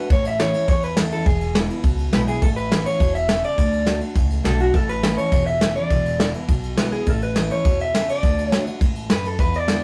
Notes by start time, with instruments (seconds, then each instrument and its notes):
0.10 upright bass A1, steel-string acoustic guitar A2, clean electric guitar C#5, kick, ride
0.25 clean electric guitar E5, ride
0.39 steel-string acoustic guitar E3 A3 C#4 E4, clean electric guitar C#5, snare, ride
0.53 steel-string acoustic guitar C#4 E4, ride
0.67 steel-string acoustic guitar E2, upright bass E2, clean electric guitar C#5, kick, ride
0.83 clean electric guitar B4, ride
0.97 steel-string acoustic guitar E3 A3 C#4 E4, clean electric guitar A4, snare, ride
1.11 steel-string acoustic guitar C#4 E4, clean electric guitar A4, ride
1.26 upright bass E1, steel-string acoustic guitar E2, clean electric guitar G#4, kick, ride
1.41 ride
1.54 steel-string acoustic guitar D3 G#3 B3 E4, snare, ride
1.68 steel-string acoustic guitar B3 E4, ride
1.83 upright bass C#2, steel-string acoustic guitar B2, kick, ride
1.99 ride
2.12 upright bass B1, steel-string acoustic guitar D3 G#3 B3 E4, clean electric guitar B4, snare, ride
2.27 steel-string acoustic guitar B3 E4, clean electric guitar G#4, ride
2.42 upright bass A1, steel-string acoustic guitar A2, clean electric guitar A4, kick, ride
2.56 clean electric guitar B4, ride
2.71 steel-string acoustic guitar E3 A3 C#4 E4, snare, ride
2.85 steel-string acoustic guitar C#4 E4, clean electric guitar C#5, ride
3.00 upright bass E1, steel-string acoustic guitar B2, kick, ride
3.15 clean electric guitar E5, ride
3.28 steel-string acoustic guitar C#3, snare, ride
3.44 clean electric guitar D5, ride
3.56 upright bass D2, steel-string acoustic guitar D3, kick, ride
3.72 ride
3.85 steel-string acoustic guitar D3 A3 D4 F#4, snare, ride
4.00 steel-string acoustic guitar D4 F#4, ride
4.15 upright bass C#2, steel-string acoustic guitar A2, kick, ride
4.30 ride
4.43 upright bass B1, steel-string acoustic guitar D3 A3 D4 F#4, clean electric guitar A4, snare, ride
4.59 steel-string acoustic guitar D4 F#4, clean electric guitar F#4, ride
4.74 upright bass A1, steel-string acoustic guitar A2, clean electric guitar A4, kick, ride
4.89 clean electric guitar B4, ride
5.03 steel-string acoustic guitar E3 A3 C#4 E4, snare, ride
5.17 steel-string acoustic guitar C#4 E4, clean electric guitar C#5, ride
5.32 upright bass E1, steel-string acoustic guitar E2, kick, ride
5.46 clean electric guitar E5, ride
5.61 steel-string acoustic guitar E3 A3 C#4 E4, snare, ride
5.75 steel-string acoustic guitar C#4 E4, clean electric guitar D5, ride
5.90 upright bass E1, steel-string acoustic guitar E2, kick, ride
6.05 ride
6.18 steel-string acoustic guitar D3 G#3 B3 E4, snare, ride
6.34 steel-string acoustic guitar B3 E4, ride
6.48 upright bass B1, steel-string acoustic guitar B2, kick, ride
6.63 ride
6.77 steel-string acoustic guitar D3 G#3 B3 E4, clean electric guitar B4, snare, ride
6.92 steel-string acoustic guitar B3 E4, clean electric guitar G#4, ride
7.06 upright bass A1, steel-string acoustic guitar A2, clean electric guitar A4, kick, ride
7.22 clean electric guitar B4, ride
7.35 steel-string acoustic guitar E3 A3 C#4 E4, snare, ride
7.50 steel-string acoustic guitar C#4 E4, clean electric guitar C#5, ride
7.65 upright bass E2, steel-string acoustic guitar B2, kick, ride
7.80 clean electric guitar E5, ride
7.94 steel-string acoustic guitar C#3, snare, ride
8.09 clean electric guitar D5, ride
8.23 upright bass D2, steel-string acoustic guitar D3, kick, ride
8.38 ride
8.48 steel-string acoustic guitar D3, clean electric guitar C#5
8.52 steel-string acoustic guitar A3 D4 F#4, snare, ride
8.66 steel-string acoustic guitar D4 F#4, ride
8.81 upright bass A1, steel-string acoustic guitar G#2, kick, ride
8.96 ride
9.10 steel-string acoustic guitar F#2, clean electric guitar B4, snare, ride
9.25 clean electric guitar A4, ride
9.39 steel-string acoustic guitar E2, upright bass E2, clean electric guitar B4, kick, ride
9.54 clean electric guitar D5, ride
9.67 steel-string acoustic guitar D3 G#3 B3 E4, snare, ride